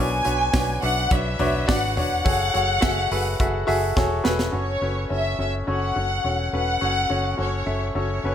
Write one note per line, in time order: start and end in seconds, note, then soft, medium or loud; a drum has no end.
0.00 0.20 B1 loud
0.00 0.78 B2 medium
0.00 0.18 D4 medium
0.00 0.18 F#4 medium
0.00 0.18 B4 medium
0.00 0.18 C#5 medium
0.00 0.79 G#5 loud
0.25 0.49 B1 medium
0.25 0.47 D4 medium
0.25 0.47 F#4 medium
0.25 0.47 B4 medium
0.25 0.48 C#5 medium
0.25 hi-hat pedal medium
0.25 open hi-hat medium
0.53 0.77 B1 loud
0.53 0.76 D4 medium
0.53 0.76 F#4 medium
0.53 0.76 B4 medium
0.53 0.76 C#5 medium
0.53 kick loud
0.53 snare medium
0.53 hi-hat pedal medium
0.53 open hi-hat medium
0.82 1.06 B1 loud
0.82 1.05 D4 medium
0.82 1.05 F#4 medium
0.82 1.05 B4 medium
0.82 1.05 E5 medium
0.82 1.12 F#5 loud
0.82 hi-hat pedal medium
0.82 open hi-hat medium
1.11 1.34 B1 loud
1.11 1.33 D4 medium
1.11 1.33 F#4 medium
1.11 1.34 B4 medium
1.11 1.34 C#5 medium
1.11 1.69 E5 medium
1.11 kick loud
1.11 hi-hat pedal medium
1.11 open hi-hat medium
1.39 1.63 B1 loud
1.39 1.62 D4 loud
1.39 1.62 F#4 medium
1.39 1.62 B4 medium
1.39 1.62 C#5 loud
1.39 floor tom medium
1.39 hi-hat pedal medium
1.39 open hi-hat medium
1.67 1.98 G#1 medium
1.67 1.90 D4 medium
1.67 1.90 F#4 medium
1.67 1.90 B4 medium
1.67 1.90 D5 loud
1.67 1.97 F#5 medium
1.67 kick loud
1.67 snare loud
1.67 hi-hat pedal medium
1.67 open hi-hat loud
1.97 2.21 E1 medium
1.97 2.19 D4 medium
1.97 2.19 F#4 medium
1.97 2.19 B4 medium
1.97 2.19 C#5 medium
1.97 3.93 F#5 loud
1.97 floor tom medium
1.97 hi-hat pedal medium
1.97 open hi-hat medium
2.24 2.49 F#1 loud
2.24 2.47 F#4 medium
2.24 2.47 G#4 medium
2.24 2.47 A4 medium
2.24 2.47 C#5 loud
2.24 kick loud
2.24 hi-hat pedal medium
2.24 open hi-hat loud
2.54 2.78 F#1 loud
2.54 2.76 F#4 medium
2.54 2.76 G#4 medium
2.54 2.76 A4 medium
2.54 2.76 C#5 medium
2.54 hi-hat pedal medium
2.54 open hi-hat medium
2.81 3.06 F#1 medium
2.81 3.04 F#4 loud
2.81 3.04 G#4 medium
2.81 3.04 A4 medium
2.81 3.04 E5 medium
2.81 kick loud
2.81 snare loud
2.81 hi-hat pedal medium
2.81 open hi-hat medium
3.11 3.34 F#1 loud
3.11 3.33 F#4 medium
3.11 3.33 G#4 medium
3.11 3.33 A4 medium
3.11 3.33 B4 medium
3.11 hi-hat pedal medium
3.11 open hi-hat medium
3.40 3.63 F#1 loud
3.40 3.62 F#4 medium
3.40 3.62 G#4 medium
3.40 3.62 A4 medium
3.40 3.62 E5 medium
3.40 kick loud
3.40 hi-hat pedal medium
3.40 open hi-hat medium
3.67 3.92 F#1 loud
3.67 3.89 F#4 loud
3.67 3.90 G#4 loud
3.67 3.90 A4 loud
3.67 3.90 E5 loud
3.67 hi-hat pedal medium
3.67 open hi-hat medium
3.96 4.20 E1 medium
3.96 4.19 F#4 medium
3.96 4.18 G#4 medium
3.96 4.19 A4 medium
3.96 4.19 C#5 loud
3.96 kick loud
3.96 snare medium
4.24 4.49 E1 medium
4.24 4.46 F#4 medium
4.24 4.47 G#4 medium
4.24 4.47 A4 medium
4.24 4.47 B4 loud
4.24 snare loud
4.39 snare medium
4.51 4.76 F#1 medium
4.51 4.75 C#4 medium
4.51 4.75 F#4 medium
4.51 4.75 A4 medium
4.51 4.75 C#5 medium
4.51 5.07 C#5 medium
4.82 5.05 F#1 medium
4.82 5.04 C#4 medium
4.82 5.04 F#4 medium
4.82 5.04 A4 medium
4.82 5.04 B4 medium
5.10 5.34 F#1 medium
5.10 5.33 C#4 medium
5.10 5.33 F#4 medium
5.10 5.33 A4 medium
5.10 5.33 C#5 medium
5.10 5.40 E5 medium
5.38 5.62 F#1 medium
5.38 5.61 C#4 medium
5.38 5.61 F#4 soft
5.38 5.61 A4 medium
5.38 5.61 C#5 medium
5.38 5.53 E5 medium
5.67 5.91 F#1 medium
5.67 5.89 C#4 medium
5.67 5.90 F#4 medium
5.67 5.90 A4 medium
5.67 5.90 C#5 medium
5.67 6.50 F#5 medium
5.96 6.19 F#1 medium
5.96 6.18 C#4 medium
5.96 6.18 F#4 medium
5.96 6.18 A4 medium
5.96 6.18 C#5 medium
6.24 6.48 E1 medium
6.24 6.47 C#4 medium
6.24 6.47 F#4 medium
6.24 6.47 A4 soft
6.24 6.47 C#5 medium
6.53 6.76 E1 medium
6.53 6.76 C#4 medium
6.53 6.76 F#4 medium
6.53 6.75 A4 medium
6.53 6.75 B4 medium
6.53 7.36 F#5 loud
6.81 7.05 F#1 medium
6.81 7.04 C#4 medium
6.81 7.04 F#4 medium
6.81 7.04 A4 medium
6.81 7.04 C#5 medium
7.09 7.34 F#1 medium
7.09 7.32 C#4 medium
7.09 7.32 F#4 medium
7.09 7.32 A4 medium
7.09 7.33 C#5 medium
7.37 7.62 F#1 medium
7.37 7.60 C#4 medium
7.37 7.60 F#4 medium
7.37 7.60 A4 medium
7.37 7.61 C#5 medium
7.37 7.93 C#5 medium
7.66 7.90 F#1 medium
7.66 7.89 C#4 medium
7.66 7.89 F#4 medium
7.66 7.89 A4 medium
7.66 7.89 E5 medium
7.95 8.19 F#1 loud
7.95 8.18 C#4 medium
7.95 8.18 F#4 medium
7.95 8.18 A4 medium
7.95 8.18 C#5 medium
7.95 8.35 C#5 medium
8.24 8.35 F#1 medium
8.24 8.35 C#4 medium
8.24 8.35 F#4 medium
8.24 8.35 A4 medium
8.24 8.35 B4 medium